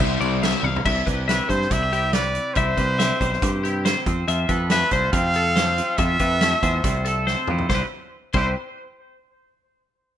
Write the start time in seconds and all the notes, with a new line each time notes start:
Already playing: C3 G3 C4 E4 G4 C5 E5
0.00 C2
0.20 C2 D5, crash
0.43 E5, snare, crash
0.54 snare
0.63 C2 F5, high tom
0.76 floor tom
0.85 C2 C3 E4 E5, kick, crash
1.06 C2 G4 B4, kick, closed hi-hat
1.28 G4 B4 E5, snare, closed hi-hat
1.49 G2 G3 C5, kick, closed hi-hat
1.61 snare
1.70 C2 E4 E5, kick, closed hi-hat
1.83 G4
1.92 C3 E4 G4, closed hi-hat
2.13 B4 D5, snare, closed hi-hat
2.35 closed hi-hat
2.54 C2 C3 E4 C5 E5, kick, closed hi-hat
2.77 C2 G4 B4, kick, closed hi-hat
2.99 G4 E5, snare, closed hi-hat
3.21 B1 G3 C5, kick, closed hi-hat
3.33 snare
3.42 G2 G4, kick, closed hi-hat
3.63 C3 E4 G4, closed hi-hat
3.85 C5, snare, closed hi-hat
4.06 F2 F3 C4, kick, closed hi-hat
4.28 F2 F4 E5, closed hi-hat
4.49 F2 A4 B4, kick, closed hi-hat
4.70 A3 B4 E5, snare, closed hi-hat
4.91 C2 C5, kick, closed hi-hat
4.95 F4
5.12 F2 C3 F5, kick, closed hi-hat
5.17 C4
5.34 A4, closed hi-hat
5.56 C5, snare, closed hi-hat
5.78 F3 C4, closed hi-hat
5.97 F2 F4 E5, kick, closed hi-hat
6.19 F2 A4 B4, kick, closed hi-hat
6.41 A3 E5, snare, closed hi-hat
6.63 E2 F4 C5, kick, closed hi-hat
6.84 C2 C3 C4, kick, closed hi-hat
7.05 A4, closed hi-hat
7.27 C5, snare
7.47 F2 F3 E4, mid tom
7.58 floor tom
7.69 C2 C3 G3 E4 C5, kick, snare
7.74 G4 B4
8.33 C2 C3 G3 E4 C5, kick, crash
8.37 G4 B4